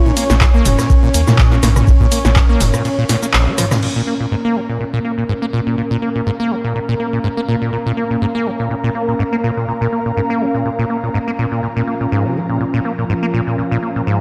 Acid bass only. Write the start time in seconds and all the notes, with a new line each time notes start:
0.06 A#2
0.17 A#3
0.30 A#2
0.41 G#2
0.54 A#3
0.65 F3
0.79 A#2
0.90 A#2
1.03 A#2
1.14 A#3
1.27 A#2
1.39 G#2
1.52 A#3
1.63 A#2
1.76 A#2
1.87 A#2
2.00 A#2
2.12 A#3
2.25 A#2
2.36 G#2
2.49 A#3
2.60 F3
2.74 A#2
2.85 A#2
2.98 A#2
3.09 A#2
3.22 A#3
3.34 A#1
3.47 A#3
3.58 F3
3.71 A#2
3.83 A#2
3.96 A#2
4.07 A#3
4.20 A#2
4.31 G#2
4.45 A#3
4.56 F3
4.69 A#2
4.80 A#2
4.93 A#2
5.05 A#3
5.18 A#2
5.29 G#2
5.42 A#3
5.53 A#2
5.66 A#2
5.78 A#2
5.91 A#2
6.02 A#3
6.15 A#2
6.26 G#2
6.40 A#3
6.51 F3
6.64 A#2
6.75 A#2
6.88 A#2
7.00 A#3
7.13 A#2
7.24 G#2
7.37 A#3
7.48 A#2
7.62 A#2
7.73 A#2
7.86 A#2
7.97 A#3
8.10 A#2
8.22 G#2
8.35 A#3
8.46 F3
8.59 A#2
8.70 A#2
8.84 A#2
8.95 A#3
9.08 A#2
9.19 G#2
9.32 A#3
9.44 A#2
9.57 A#2
9.68 A#2
9.81 A#2
9.92 A#3
10.06 A#2
10.17 G#2
10.30 A#3
10.41 F3
10.54 A#2
10.65 A#2
10.79 A#2
10.90 A#3
11.03 A#2
11.14 G#2
11.27 A#3
11.39 A#2
11.52 A#2
11.63 A#2
11.76 A#2
11.87 A#3
12.01 A#2
12.12 G#2
12.25 C3
12.36 F3
12.49 A#2
12.61 A#2
12.74 A#2
12.85 A#3
12.98 A#2
13.09 G#2
13.23 A#3
13.34 A#2
13.47 A#2
13.58 A#2
13.71 A#2
13.83 A#3
13.96 A#2
14.07 G#2